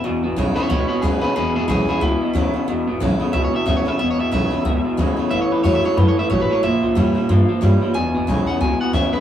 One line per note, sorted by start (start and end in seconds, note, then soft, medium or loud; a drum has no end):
0.04 0.19 E1 medium
0.04 0.67 E2 medium
0.04 0.22 E2 medium
0.04 0.22 B2 medium
0.23 0.34 G#1 medium
0.23 0.35 E2 medium
0.23 0.36 B2 medium
0.36 0.52 B1 medium
0.36 0.55 E2 medium
0.36 0.55 C#3 medium
0.36 0.55 E3 medium
0.36 0.56 G#3 medium
0.36 0.56 B3 medium
0.36 0.55 E4 medium
0.55 0.68 E2 medium
0.55 0.69 C#3 medium
0.55 0.70 B3 soft
0.55 0.68 E4 medium
0.55 0.69 E4 medium
0.55 0.68 C#5 medium
0.55 muted upright bass stroke medium
0.69 0.85 C#2 medium
0.69 0.87 E2 medium
0.69 1.33 B2 medium
0.69 0.88 B2 medium
0.69 0.87 E4 medium
0.69 0.87 C#5 medium
0.88 1.02 E2 medium
0.88 1.02 B2 medium
0.88 1.01 E4 medium
0.88 1.02 C#5 medium
0.88 muted upright bass stroke medium
1.02 1.18 D2 medium
1.02 1.20 E2 medium
1.02 1.20 C#3 loud
1.02 1.21 E3 medium
1.02 1.22 G#3 medium
1.02 1.22 B3 loud
1.02 1.20 E4 loud
1.02 1.20 G#4 medium
1.02 1.21 B4 medium
1.21 1.34 E2 medium
1.21 1.35 C#3 medium
1.21 1.36 B3 soft
1.21 1.35 E4 medium
1.21 1.34 G#4 medium
1.21 1.35 B4 medium
1.21 muted upright bass stroke medium
1.36 1.50 E1 loud
1.36 1.53 E2 medium
1.36 1.99 E2 medium
1.36 1.54 B2 loud
1.36 1.54 G#4 medium
1.36 1.55 B4 medium
1.55 1.65 G#1 medium
1.55 1.68 E2 medium
1.55 1.68 B2 medium
1.55 1.67 E4 medium
1.55 1.68 G#4 medium
1.68 1.83 B1 medium
1.68 1.86 E2 medium
1.68 1.87 C#3 medium
1.68 1.87 E3 medium
1.68 1.87 G#3 medium
1.68 1.88 B3 medium
1.68 1.86 E4 medium
1.68 1.87 E4 loud
1.68 1.88 G#4 medium
1.88 2.01 E2 medium
1.88 2.01 C#3 medium
1.88 2.02 B3 soft
1.88 2.01 E4 medium
1.88 2.02 G#4 medium
1.88 muted upright bass stroke medium
2.01 2.16 C#2 loud
2.01 2.19 E2 medium
2.01 2.65 B2 medium
2.01 2.19 B2 medium
2.01 2.98 E4 medium
2.21 2.33 E2 medium
2.21 2.34 B2 medium
2.21 muted upright bass stroke medium
2.33 2.49 D2 medium
2.33 2.52 E2 medium
2.33 2.52 C#3 loud
2.33 2.53 E3 medium
2.33 2.53 G#3 medium
2.33 2.54 B3 loud
2.33 2.52 E4 loud
2.54 2.66 E2 medium
2.54 2.67 C#3 medium
2.54 2.68 B3 soft
2.54 2.67 E4 medium
2.54 muted upright bass stroke medium
2.68 2.82 E1 loud
2.68 2.85 E2 medium
2.68 3.31 E2 medium
2.68 2.85 B2 loud
2.87 2.97 G#1 medium
2.87 2.99 E2 medium
2.87 3.00 B2 medium
3.00 3.16 B1 medium
3.00 3.18 E2 medium
3.00 3.19 C#3 medium
3.00 3.19 E3 medium
3.00 3.20 G#3 medium
3.00 3.20 B3 medium
3.00 3.18 E4 medium
3.20 3.32 E2 medium
3.20 3.32 C#3 medium
3.20 3.34 B3 medium
3.20 3.33 E4 medium
3.20 muted upright bass stroke medium
3.33 3.49 C#2 medium
3.33 3.51 E2 medium
3.33 3.96 B2 medium
3.33 3.51 B2 medium
3.33 3.44 E5 medium
3.44 3.55 C#5 medium
3.53 3.65 E2 medium
3.53 3.65 B2 medium
3.53 3.65 E5 medium
3.53 muted upright bass stroke medium
3.66 3.82 D2 medium
3.66 3.84 E2 medium
3.66 3.84 C#3 loud
3.66 3.85 E3 medium
3.66 3.85 G#3 medium
3.66 3.86 B3 medium
3.66 3.84 E4 medium
3.66 3.76 E5 loud
3.77 3.88 C#5 medium
3.85 3.98 E2 medium
3.85 3.98 C#3 medium
3.85 4.00 B3 medium
3.85 3.99 E4 medium
3.85 3.98 E5 medium
3.85 muted upright bass stroke medium
3.99 4.14 E1 medium
3.99 4.63 E2 medium
3.99 4.17 E2 medium
3.99 4.17 B2 loud
3.99 4.10 E5 medium
4.11 4.20 C#5 medium
4.19 4.29 G#1 medium
4.19 4.31 E2 medium
4.19 4.31 B2 medium
4.19 4.31 E5 medium
4.31 4.47 B1 medium
4.31 4.50 E2 medium
4.31 4.50 C#3 medium
4.31 4.51 E3 medium
4.31 4.51 G#3 medium
4.31 4.52 B3 medium
4.31 4.49 E4 loud
4.31 4.96 E5 medium
4.51 4.63 E2 medium
4.51 4.64 C#3 medium
4.51 4.65 B3 soft
4.51 4.64 E4 medium
4.51 muted upright bass stroke medium
4.65 4.80 C#2 medium
4.65 4.82 E2 medium
4.65 5.28 B2 medium
4.65 4.83 B2 medium
4.84 4.97 E2 medium
4.84 4.97 B2 medium
4.84 muted upright bass stroke medium
4.97 5.13 D2 medium
4.97 5.16 E2 medium
4.97 5.16 C#3 medium
4.97 5.16 E3 medium
4.97 5.17 G#3 loud
4.97 5.17 B3 medium
4.97 5.16 E4 loud
5.17 5.30 E2 medium
5.17 5.30 C#3 medium
5.17 5.31 B3 soft
5.17 5.30 E4 medium
5.17 muted upright bass stroke medium
5.31 5.46 A1 loud
5.31 5.94 A2 medium
5.31 5.49 A2 medium
5.31 5.49 E3 medium
5.31 5.41 E5 loud
5.42 5.52 C#5 medium
5.51 5.61 C#2 medium
5.51 5.63 A2 medium
5.51 5.63 E3 medium
5.51 5.63 B4 medium
5.64 5.79 E2 medium
5.64 5.82 A2 medium
5.64 5.83 E3 medium
5.64 5.82 F#3 loud
5.64 5.83 A3 medium
5.64 5.83 C#4 loud
5.64 5.82 E4 loud
5.64 5.75 C#5 medium
5.75 5.85 E5 medium
5.83 5.96 A2 medium
5.83 5.96 F#3 medium
5.83 5.97 C#4 medium
5.83 5.96 E4 medium
5.83 5.97 C#5 medium
5.83 muted upright bass stroke medium
5.97 6.12 F#2 medium
5.97 6.29 G#2 medium
5.97 6.15 A2 medium
5.97 6.15 E3 medium
5.97 6.08 B4 medium
6.08 6.19 C#5 medium
6.17 6.29 A2 medium
6.17 6.29 E3 medium
6.17 6.30 E5 medium
6.17 muted upright bass stroke medium
6.30 6.45 A1 medium
6.30 6.62 A2 medium
6.30 6.48 A2 medium
6.30 6.48 F#3 medium
6.30 6.41 C#5 medium
6.41 6.52 B4 medium
6.50 6.62 A2 medium
6.50 6.62 F#3 medium
6.50 6.63 C#5 medium
6.50 muted upright bass stroke medium
6.63 6.78 A#1 medium
6.63 7.26 A#2 medium
6.63 6.81 A#2 medium
6.63 6.81 F3 medium
6.63 7.27 E5 loud
6.83 6.93 C#2 medium
6.83 6.95 A#2 medium
6.83 6.95 F3 medium
6.95 7.11 E2 medium
6.95 7.14 A#2 medium
6.95 7.14 E3 medium
6.95 7.15 G3 medium
6.95 7.14 G3 medium
6.95 7.15 C#4 medium
6.95 7.13 E4 loud
7.14 7.27 A#2 medium
7.14 7.28 G3 medium
7.14 7.29 C#4 soft
7.14 7.28 E4 medium
7.14 muted upright bass stroke medium
7.29 7.44 G2 medium
7.29 7.46 A#2 medium
7.29 7.60 E3 medium
7.29 7.47 F3 medium
7.49 7.61 A#2 medium
7.49 7.61 F3 medium
7.49 muted upright bass stroke medium
7.61 7.77 G2 medium
7.61 7.79 A#2 medium
7.61 7.93 E3 medium
7.61 7.93 G3 medium
7.61 7.80 G3 medium
7.61 7.94 C#4 medium
7.61 7.94 E4 loud
7.82 7.94 A#2 medium
7.82 7.94 G3 medium
7.82 muted upright bass stroke medium
7.94 8.10 E1 medium
7.94 8.58 E2 medium
7.94 8.12 E2 medium
7.94 8.13 B2 medium
7.94 8.45 G#5 loud
8.14 8.24 G#1 medium
8.14 8.26 E2 medium
8.14 8.27 B2 medium
8.27 8.42 B1 medium
8.27 8.45 E2 medium
8.27 8.46 C#3 medium
8.27 8.46 E3 medium
8.27 8.46 G#3 medium
8.27 8.47 B3 loud
8.27 8.45 E4 loud
8.46 8.59 E2 medium
8.46 8.60 C#3 medium
8.46 8.61 B3 soft
8.46 8.60 E4 medium
8.46 8.60 F#5 medium
8.46 muted upright bass stroke medium
8.61 8.75 C#2 medium
8.61 8.78 E2 medium
8.61 9.20 B2 medium
8.61 8.79 B2 loud
8.61 8.80 G#5 medium
8.79 8.92 E2 medium
8.79 8.93 B2 medium
8.79 8.93 F#5 medium
8.79 muted upright bass stroke medium
8.93 9.08 D2 loud
8.93 9.11 E2 medium
8.93 9.11 C#3 loud
8.93 9.12 E3 medium
8.93 9.12 G#3 medium
8.93 9.13 B3 medium
8.93 9.12 E4 medium
8.93 9.12 E5 medium
9.13 9.20 E2 medium
9.13 9.20 C#3 medium
9.13 9.20 B3 soft
9.13 9.20 E4 medium
9.13 9.20 B4 medium
9.13 muted upright bass stroke medium